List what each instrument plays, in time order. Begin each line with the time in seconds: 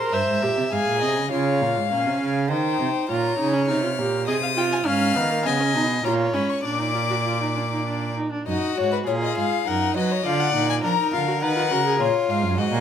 Already playing: violin C5 C6
0.00 viola A#4
0.13 cello G2, viola C5, violin E5 A#5
0.28 cello G#2
0.43 cello A#2, viola G4
0.58 cello C3
0.72 cello G#2, viola G#4, violin F5 G#5
0.87 cello A#2
1.01 cello C3, violin D#5
1.17 cello C#3
1.31 cello C#3, viola F4, violin C#5 F5
1.62 cello A#2
1.77 cello G#2
1.91 cello A#2, viola C#4, violin F5
2.06 cello C3
2.21 cello C#3
2.50 cello D#3, viola D#4, violin C5 G5
2.80 cello C3
3.09 cello A#2, viola F4, violin C#5 A#5
3.39 cello C#3, viola D#4
3.54 viola C#4
3.69 cello C3, viola D#4, violin F6
3.83 viola F4
3.98 cello A#2, viola G4
4.27 cello C3, viola G#4, violin D#5 D#6
4.43 violin F5
4.56 viola F4, violin G5
4.72 violin G#5
4.86 cello G#2, viola C#4, violin F5 F6
5.16 cello D#3, viola B3
5.30 viola A#3
5.45 cello C#3, viola B3, violin D#5 G#5
5.60 viola C#4
5.75 cello B2, viola D#4
6.04 cello A#2, viola F4, violin C#5 A#5
6.34 cello G#2, viola C#4, violin B5
6.50 violin C#6
6.64 cello A#2, viola D4, violin D5 D6
6.80 viola D#4
6.95 viola F4
7.10 viola F#4
7.26 viola F4
7.41 viola D#4
7.56 viola D4
7.71 viola D#4
7.86 viola D4
8.16 viola D#4
8.32 viola D4
8.47 cello F#2, viola D#4, violin F#4 D#5
8.77 cello G#2, viola F#4, violin C#5
8.93 violin B4
9.07 cello A#2, viola F4, violin G#4 C#5
9.23 violin D#5
9.37 cello G#2, violin F5
9.67 cello F#2, viola D#4, violin A#4 F#5
9.96 cello F#3, viola F#4, violin B4 D#5
10.11 violin C#5
10.25 cello D3, viola F4, violin D5 F5
10.41 violin F#5
10.55 cello A#2, viola D#4
10.70 violin G#5
10.84 cello F3, viola D4, violin A#4 A#5
10.98 viola D#4
11.13 cello D3, viola F4, violin F5
11.27 viola F#4
11.42 cello D#3, viola D#4, violin B4 F#5
11.56 viola F4
11.70 cello C#3, viola F#4, violin A#4
11.85 viola G#4
12.00 cello A#2, violin F4 C#5
12.28 cello G#2, violin F5
12.43 cello F#2
12.57 cello G#2, violin F#4 D#5
12.72 cello A#2